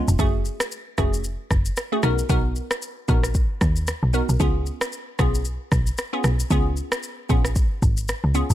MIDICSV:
0, 0, Header, 1, 4, 480
1, 0, Start_track
1, 0, Tempo, 526316
1, 174, Time_signature, 4, 2, 24, 8
1, 7788, End_track
2, 0, Start_track
2, 0, Title_t, "Synth pluck"
2, 0, Program_c, 0, 84
2, 0, Note_on_c, 0, 56, 74
2, 0, Note_on_c, 0, 59, 68
2, 0, Note_on_c, 0, 61, 71
2, 0, Note_on_c, 0, 65, 82
2, 123, Note_off_c, 0, 56, 0
2, 124, Note_off_c, 0, 59, 0
2, 125, Note_off_c, 0, 61, 0
2, 126, Note_off_c, 0, 65, 0
2, 172, Note_on_c, 0, 57, 93
2, 174, Note_on_c, 0, 61, 86
2, 176, Note_on_c, 0, 66, 87
2, 177, Note_on_c, 0, 68, 102
2, 845, Note_off_c, 0, 57, 0
2, 846, Note_off_c, 0, 61, 0
2, 847, Note_off_c, 0, 66, 0
2, 848, Note_off_c, 0, 68, 0
2, 892, Note_on_c, 0, 57, 73
2, 893, Note_on_c, 0, 61, 70
2, 896, Note_on_c, 0, 66, 69
2, 897, Note_on_c, 0, 68, 84
2, 1117, Note_off_c, 0, 57, 0
2, 1118, Note_off_c, 0, 61, 0
2, 1119, Note_off_c, 0, 66, 0
2, 1119, Note_off_c, 0, 68, 0
2, 1752, Note_on_c, 0, 57, 76
2, 1754, Note_on_c, 0, 61, 71
2, 1755, Note_on_c, 0, 66, 75
2, 1757, Note_on_c, 0, 68, 86
2, 1844, Note_off_c, 0, 66, 0
2, 1851, Note_on_c, 0, 59, 92
2, 1853, Note_on_c, 0, 63, 83
2, 1855, Note_on_c, 0, 66, 82
2, 1857, Note_on_c, 0, 70, 100
2, 1923, Note_off_c, 0, 57, 0
2, 1924, Note_off_c, 0, 61, 0
2, 1926, Note_off_c, 0, 68, 0
2, 2077, Note_off_c, 0, 59, 0
2, 2078, Note_off_c, 0, 63, 0
2, 2079, Note_off_c, 0, 66, 0
2, 2080, Note_off_c, 0, 70, 0
2, 2091, Note_on_c, 0, 59, 91
2, 2093, Note_on_c, 0, 63, 87
2, 2095, Note_on_c, 0, 66, 84
2, 2097, Note_on_c, 0, 70, 102
2, 2765, Note_off_c, 0, 59, 0
2, 2766, Note_off_c, 0, 63, 0
2, 2766, Note_off_c, 0, 66, 0
2, 2767, Note_off_c, 0, 70, 0
2, 2811, Note_on_c, 0, 59, 78
2, 2813, Note_on_c, 0, 63, 72
2, 2815, Note_on_c, 0, 66, 69
2, 2817, Note_on_c, 0, 70, 83
2, 3037, Note_off_c, 0, 59, 0
2, 3038, Note_off_c, 0, 63, 0
2, 3039, Note_off_c, 0, 66, 0
2, 3039, Note_off_c, 0, 70, 0
2, 3771, Note_on_c, 0, 59, 71
2, 3773, Note_on_c, 0, 63, 68
2, 3775, Note_on_c, 0, 66, 67
2, 3777, Note_on_c, 0, 70, 80
2, 3962, Note_off_c, 0, 59, 0
2, 3964, Note_off_c, 0, 63, 0
2, 3964, Note_off_c, 0, 66, 0
2, 3965, Note_off_c, 0, 70, 0
2, 4010, Note_on_c, 0, 59, 94
2, 4013, Note_on_c, 0, 61, 86
2, 4014, Note_on_c, 0, 65, 88
2, 4016, Note_on_c, 0, 68, 104
2, 4684, Note_off_c, 0, 59, 0
2, 4685, Note_off_c, 0, 61, 0
2, 4686, Note_off_c, 0, 65, 0
2, 4687, Note_off_c, 0, 68, 0
2, 4731, Note_on_c, 0, 59, 76
2, 4732, Note_on_c, 0, 61, 67
2, 4734, Note_on_c, 0, 65, 67
2, 4737, Note_on_c, 0, 68, 84
2, 4957, Note_off_c, 0, 59, 0
2, 4957, Note_off_c, 0, 61, 0
2, 4958, Note_off_c, 0, 65, 0
2, 4959, Note_off_c, 0, 68, 0
2, 5590, Note_on_c, 0, 59, 80
2, 5592, Note_on_c, 0, 61, 71
2, 5593, Note_on_c, 0, 65, 75
2, 5596, Note_on_c, 0, 68, 84
2, 5762, Note_off_c, 0, 59, 0
2, 5763, Note_off_c, 0, 61, 0
2, 5764, Note_off_c, 0, 65, 0
2, 5765, Note_off_c, 0, 68, 0
2, 5932, Note_on_c, 0, 59, 93
2, 5934, Note_on_c, 0, 61, 87
2, 5936, Note_on_c, 0, 65, 86
2, 5938, Note_on_c, 0, 68, 100
2, 6605, Note_off_c, 0, 59, 0
2, 6606, Note_off_c, 0, 61, 0
2, 6607, Note_off_c, 0, 65, 0
2, 6608, Note_off_c, 0, 68, 0
2, 6651, Note_on_c, 0, 59, 77
2, 6654, Note_on_c, 0, 61, 69
2, 6655, Note_on_c, 0, 65, 68
2, 6657, Note_on_c, 0, 68, 84
2, 6877, Note_off_c, 0, 59, 0
2, 6878, Note_off_c, 0, 61, 0
2, 6879, Note_off_c, 0, 65, 0
2, 6880, Note_off_c, 0, 68, 0
2, 7612, Note_on_c, 0, 59, 75
2, 7613, Note_on_c, 0, 61, 68
2, 7615, Note_on_c, 0, 65, 66
2, 7617, Note_on_c, 0, 68, 78
2, 7788, Note_off_c, 0, 59, 0
2, 7788, Note_off_c, 0, 61, 0
2, 7788, Note_off_c, 0, 65, 0
2, 7788, Note_off_c, 0, 68, 0
2, 7788, End_track
3, 0, Start_track
3, 0, Title_t, "Log drum bass"
3, 0, Program_c, 1, 39
3, 74, Note_on_c, 1, 29, 94
3, 148, Note_off_c, 1, 29, 0
3, 174, Note_on_c, 1, 30, 109
3, 453, Note_off_c, 1, 30, 0
3, 897, Note_on_c, 1, 29, 89
3, 1249, Note_off_c, 1, 29, 0
3, 1377, Note_on_c, 1, 30, 87
3, 1552, Note_off_c, 1, 30, 0
3, 1855, Note_on_c, 1, 35, 103
3, 2031, Note_off_c, 1, 35, 0
3, 2094, Note_on_c, 1, 35, 102
3, 2373, Note_off_c, 1, 35, 0
3, 2817, Note_on_c, 1, 34, 98
3, 3169, Note_off_c, 1, 34, 0
3, 3296, Note_on_c, 1, 39, 96
3, 3575, Note_off_c, 1, 39, 0
3, 3673, Note_on_c, 1, 35, 91
3, 3850, Note_off_c, 1, 35, 0
3, 3913, Note_on_c, 1, 35, 90
3, 3988, Note_off_c, 1, 35, 0
3, 4014, Note_on_c, 1, 37, 101
3, 4293, Note_off_c, 1, 37, 0
3, 4737, Note_on_c, 1, 35, 84
3, 5089, Note_off_c, 1, 35, 0
3, 5216, Note_on_c, 1, 35, 90
3, 5392, Note_off_c, 1, 35, 0
3, 5693, Note_on_c, 1, 35, 94
3, 5870, Note_off_c, 1, 35, 0
3, 5934, Note_on_c, 1, 37, 104
3, 6213, Note_off_c, 1, 37, 0
3, 6657, Note_on_c, 1, 34, 93
3, 7009, Note_off_c, 1, 34, 0
3, 7135, Note_on_c, 1, 32, 86
3, 7414, Note_off_c, 1, 32, 0
3, 7513, Note_on_c, 1, 37, 84
3, 7690, Note_off_c, 1, 37, 0
3, 7754, Note_on_c, 1, 29, 96
3, 7788, Note_off_c, 1, 29, 0
3, 7788, End_track
4, 0, Start_track
4, 0, Title_t, "Drums"
4, 74, Note_on_c, 9, 82, 78
4, 165, Note_off_c, 9, 82, 0
4, 173, Note_on_c, 9, 82, 82
4, 174, Note_on_c, 9, 36, 112
4, 265, Note_off_c, 9, 36, 0
4, 265, Note_off_c, 9, 82, 0
4, 412, Note_on_c, 9, 82, 47
4, 503, Note_off_c, 9, 82, 0
4, 549, Note_on_c, 9, 37, 121
4, 552, Note_on_c, 9, 82, 80
4, 640, Note_off_c, 9, 37, 0
4, 643, Note_off_c, 9, 82, 0
4, 652, Note_on_c, 9, 82, 70
4, 743, Note_off_c, 9, 82, 0
4, 893, Note_on_c, 9, 82, 51
4, 894, Note_on_c, 9, 37, 88
4, 897, Note_on_c, 9, 36, 87
4, 984, Note_off_c, 9, 82, 0
4, 985, Note_off_c, 9, 37, 0
4, 988, Note_off_c, 9, 36, 0
4, 1036, Note_on_c, 9, 82, 75
4, 1127, Note_off_c, 9, 82, 0
4, 1130, Note_on_c, 9, 82, 72
4, 1222, Note_off_c, 9, 82, 0
4, 1373, Note_on_c, 9, 37, 81
4, 1376, Note_on_c, 9, 36, 92
4, 1377, Note_on_c, 9, 82, 55
4, 1464, Note_off_c, 9, 37, 0
4, 1467, Note_off_c, 9, 36, 0
4, 1468, Note_off_c, 9, 82, 0
4, 1509, Note_on_c, 9, 82, 70
4, 1600, Note_off_c, 9, 82, 0
4, 1610, Note_on_c, 9, 82, 80
4, 1619, Note_on_c, 9, 37, 89
4, 1702, Note_off_c, 9, 82, 0
4, 1710, Note_off_c, 9, 37, 0
4, 1850, Note_on_c, 9, 82, 55
4, 1852, Note_on_c, 9, 37, 89
4, 1942, Note_off_c, 9, 82, 0
4, 1943, Note_off_c, 9, 37, 0
4, 1993, Note_on_c, 9, 82, 77
4, 2084, Note_off_c, 9, 82, 0
4, 2093, Note_on_c, 9, 82, 80
4, 2094, Note_on_c, 9, 36, 109
4, 2184, Note_off_c, 9, 82, 0
4, 2185, Note_off_c, 9, 36, 0
4, 2332, Note_on_c, 9, 82, 48
4, 2423, Note_off_c, 9, 82, 0
4, 2469, Note_on_c, 9, 37, 117
4, 2473, Note_on_c, 9, 82, 79
4, 2560, Note_off_c, 9, 37, 0
4, 2564, Note_off_c, 9, 82, 0
4, 2572, Note_on_c, 9, 82, 69
4, 2663, Note_off_c, 9, 82, 0
4, 2813, Note_on_c, 9, 82, 54
4, 2817, Note_on_c, 9, 36, 87
4, 2904, Note_off_c, 9, 82, 0
4, 2909, Note_off_c, 9, 36, 0
4, 2950, Note_on_c, 9, 37, 80
4, 2956, Note_on_c, 9, 82, 72
4, 3041, Note_off_c, 9, 37, 0
4, 3047, Note_off_c, 9, 82, 0
4, 3051, Note_on_c, 9, 82, 69
4, 3054, Note_on_c, 9, 36, 90
4, 3142, Note_off_c, 9, 82, 0
4, 3145, Note_off_c, 9, 36, 0
4, 3293, Note_on_c, 9, 37, 79
4, 3296, Note_on_c, 9, 36, 86
4, 3296, Note_on_c, 9, 82, 55
4, 3384, Note_off_c, 9, 37, 0
4, 3387, Note_off_c, 9, 36, 0
4, 3388, Note_off_c, 9, 82, 0
4, 3430, Note_on_c, 9, 82, 69
4, 3521, Note_off_c, 9, 82, 0
4, 3531, Note_on_c, 9, 82, 77
4, 3539, Note_on_c, 9, 37, 89
4, 3622, Note_off_c, 9, 82, 0
4, 3630, Note_off_c, 9, 37, 0
4, 3771, Note_on_c, 9, 82, 54
4, 3862, Note_off_c, 9, 82, 0
4, 3913, Note_on_c, 9, 82, 75
4, 4004, Note_off_c, 9, 82, 0
4, 4013, Note_on_c, 9, 82, 81
4, 4014, Note_on_c, 9, 36, 110
4, 4105, Note_off_c, 9, 36, 0
4, 4105, Note_off_c, 9, 82, 0
4, 4252, Note_on_c, 9, 82, 49
4, 4343, Note_off_c, 9, 82, 0
4, 4389, Note_on_c, 9, 37, 123
4, 4392, Note_on_c, 9, 82, 77
4, 4480, Note_off_c, 9, 37, 0
4, 4483, Note_off_c, 9, 82, 0
4, 4492, Note_on_c, 9, 82, 70
4, 4583, Note_off_c, 9, 82, 0
4, 4732, Note_on_c, 9, 82, 54
4, 4733, Note_on_c, 9, 37, 86
4, 4737, Note_on_c, 9, 36, 88
4, 4824, Note_off_c, 9, 37, 0
4, 4824, Note_off_c, 9, 82, 0
4, 4828, Note_off_c, 9, 36, 0
4, 4875, Note_on_c, 9, 82, 76
4, 4966, Note_off_c, 9, 82, 0
4, 4970, Note_on_c, 9, 82, 70
4, 5061, Note_off_c, 9, 82, 0
4, 5213, Note_on_c, 9, 37, 82
4, 5216, Note_on_c, 9, 36, 90
4, 5217, Note_on_c, 9, 82, 55
4, 5304, Note_off_c, 9, 37, 0
4, 5307, Note_off_c, 9, 36, 0
4, 5308, Note_off_c, 9, 82, 0
4, 5350, Note_on_c, 9, 82, 69
4, 5441, Note_off_c, 9, 82, 0
4, 5451, Note_on_c, 9, 82, 77
4, 5459, Note_on_c, 9, 37, 87
4, 5542, Note_off_c, 9, 82, 0
4, 5550, Note_off_c, 9, 37, 0
4, 5690, Note_on_c, 9, 82, 54
4, 5692, Note_on_c, 9, 37, 89
4, 5782, Note_off_c, 9, 82, 0
4, 5783, Note_off_c, 9, 37, 0
4, 5833, Note_on_c, 9, 82, 77
4, 5924, Note_off_c, 9, 82, 0
4, 5933, Note_on_c, 9, 82, 77
4, 5934, Note_on_c, 9, 36, 108
4, 6024, Note_off_c, 9, 82, 0
4, 6025, Note_off_c, 9, 36, 0
4, 6172, Note_on_c, 9, 82, 50
4, 6263, Note_off_c, 9, 82, 0
4, 6309, Note_on_c, 9, 37, 118
4, 6312, Note_on_c, 9, 82, 80
4, 6400, Note_off_c, 9, 37, 0
4, 6404, Note_off_c, 9, 82, 0
4, 6412, Note_on_c, 9, 82, 71
4, 6503, Note_off_c, 9, 82, 0
4, 6653, Note_on_c, 9, 82, 53
4, 6657, Note_on_c, 9, 36, 84
4, 6744, Note_off_c, 9, 82, 0
4, 6748, Note_off_c, 9, 36, 0
4, 6791, Note_on_c, 9, 37, 83
4, 6797, Note_on_c, 9, 82, 73
4, 6882, Note_off_c, 9, 37, 0
4, 6888, Note_off_c, 9, 82, 0
4, 6891, Note_on_c, 9, 82, 73
4, 6893, Note_on_c, 9, 36, 92
4, 6982, Note_off_c, 9, 82, 0
4, 6984, Note_off_c, 9, 36, 0
4, 7136, Note_on_c, 9, 36, 91
4, 7137, Note_on_c, 9, 82, 58
4, 7227, Note_off_c, 9, 36, 0
4, 7228, Note_off_c, 9, 82, 0
4, 7270, Note_on_c, 9, 82, 69
4, 7361, Note_off_c, 9, 82, 0
4, 7371, Note_on_c, 9, 82, 75
4, 7379, Note_on_c, 9, 37, 85
4, 7462, Note_off_c, 9, 82, 0
4, 7470, Note_off_c, 9, 37, 0
4, 7611, Note_on_c, 9, 82, 58
4, 7703, Note_off_c, 9, 82, 0
4, 7754, Note_on_c, 9, 82, 76
4, 7788, Note_off_c, 9, 82, 0
4, 7788, End_track
0, 0, End_of_file